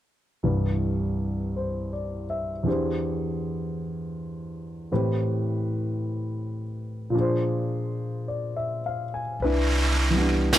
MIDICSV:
0, 0, Header, 1, 4, 480
1, 0, Start_track
1, 0, Key_signature, 0, "major"
1, 0, Tempo, 1123596
1, 180, Time_signature, 4, 2, 24, 8
1, 4521, End_track
2, 0, Start_track
2, 0, Title_t, "Grand piano"
2, 0, Program_c, 0, 0
2, 184, Note_on_c, 0, 36, 34
2, 186, Note_on_c, 0, 43, 29
2, 187, Note_on_c, 0, 52, 26
2, 188, Note_on_c, 0, 62, 30
2, 189, Note_on_c, 0, 71, 34
2, 272, Control_c, 0, 64, 127
2, 668, Note_on_c, 0, 72, 35
2, 825, Note_on_c, 0, 74, 27
2, 963, Note_off_c, 0, 72, 0
2, 982, Note_on_c, 0, 76, 31
2, 1070, Note_off_c, 0, 74, 0
2, 1125, Note_off_c, 0, 52, 0
2, 1125, Note_on_c, 0, 40, 35
2, 1130, Note_off_c, 0, 62, 0
2, 1131, Note_on_c, 0, 52, 35
2, 1137, Note_on_c, 0, 62, 32
2, 1140, Note_on_c, 0, 67, 34
2, 1142, Note_on_c, 0, 68, 35
2, 1143, Note_off_c, 0, 36, 0
2, 1144, Note_off_c, 0, 43, 0
2, 1145, Note_off_c, 0, 71, 0
2, 1145, Control_c, 0, 64, 0
2, 1149, Note_on_c, 0, 72, 40
2, 1229, Note_off_c, 0, 76, 0
2, 1233, Control_c, 0, 64, 127
2, 2088, Note_off_c, 0, 40, 0
2, 2091, Note_off_c, 0, 52, 0
2, 2094, Note_off_c, 0, 62, 0
2, 2095, Note_off_c, 0, 67, 0
2, 2096, Note_off_c, 0, 68, 0
2, 2100, Note_off_c, 0, 72, 0
2, 2101, Control_c, 0, 64, 0
2, 2101, Note_on_c, 0, 45, 38
2, 2104, Note_on_c, 0, 60, 40
2, 2104, Note_on_c, 0, 67, 35
2, 2104, Note_on_c, 0, 71, 44
2, 2105, Note_on_c, 0, 52, 36
2, 2177, Control_c, 0, 64, 127
2, 3033, Note_on_c, 0, 46, 44
2, 3041, Note_on_c, 0, 53, 40
2, 3053, Note_off_c, 0, 45, 0
2, 3054, Note_off_c, 0, 52, 0
2, 3054, Note_off_c, 0, 60, 0
2, 3054, Note_off_c, 0, 67, 0
2, 3054, Note_off_c, 0, 71, 0
2, 3054, Note_on_c, 0, 62, 40
2, 3055, Control_c, 0, 64, 0
2, 3064, Note_on_c, 0, 68, 39
2, 3078, Note_on_c, 0, 72, 51
2, 3136, Control_c, 0, 64, 127
2, 3538, Note_on_c, 0, 74, 32
2, 3659, Note_on_c, 0, 76, 34
2, 3759, Note_off_c, 0, 74, 0
2, 3785, Note_on_c, 0, 77, 32
2, 3862, Note_off_c, 0, 76, 0
2, 3904, Note_on_c, 0, 80, 35
2, 3932, Note_off_c, 0, 77, 0
2, 4010, Note_off_c, 0, 46, 0
2, 4014, Note_off_c, 0, 53, 0
2, 4021, Note_off_c, 0, 62, 0
2, 4025, Control_c, 0, 64, 0
2, 4026, Note_off_c, 0, 68, 0
2, 4026, Note_on_c, 0, 71, 63
2, 4033, Note_off_c, 0, 72, 0
2, 4033, Note_on_c, 0, 62, 47
2, 4037, Note_on_c, 0, 64, 45
2, 4070, Note_off_c, 0, 80, 0
2, 4093, Control_c, 0, 64, 127
2, 4316, Note_on_c, 0, 52, 39
2, 4332, Note_on_c, 0, 55, 35
2, 4345, Note_on_c, 0, 59, 38
2, 4358, Note_off_c, 0, 62, 0
2, 4365, Note_on_c, 0, 62, 44
2, 4521, Note_off_c, 0, 52, 0
2, 4521, Note_off_c, 0, 55, 0
2, 4521, Note_off_c, 0, 59, 0
2, 4521, Note_off_c, 0, 62, 0
2, 4521, Note_off_c, 0, 64, 0
2, 4521, Note_off_c, 0, 71, 0
2, 4521, End_track
3, 0, Start_track
3, 0, Title_t, "Upright bass"
3, 0, Program_c, 1, 32
3, 4015, Note_on_c, 1, 36, 59
3, 4521, Note_off_c, 1, 36, 0
3, 4521, End_track
4, 0, Start_track
4, 0, Title_t, "Drums"
4, 4015, Note_on_c, 9, 25, 33
4, 4497, Note_off_c, 9, 25, 0
4, 4497, Note_on_c, 9, 25, 31
4, 4497, Note_on_c, 9, 38, 33
4, 4497, Note_on_c, 9, 44, 41
4, 4521, Note_off_c, 9, 25, 0
4, 4521, Note_off_c, 9, 38, 0
4, 4521, Note_off_c, 9, 44, 0
4, 4521, End_track
0, 0, End_of_file